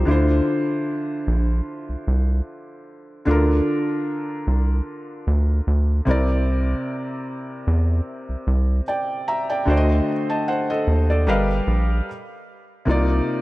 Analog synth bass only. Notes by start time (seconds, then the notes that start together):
0.08 D2
1.27 A#1
1.89 C2
2.07 C2
3.27 D2
4.47 C2
5.27 D2
5.67 D2
6.07 C2
7.67 E2
8.29 C2
8.47 C2
9.67 D2
10.87 D#2
11.27 G1
11.67 A#1
12.87 C2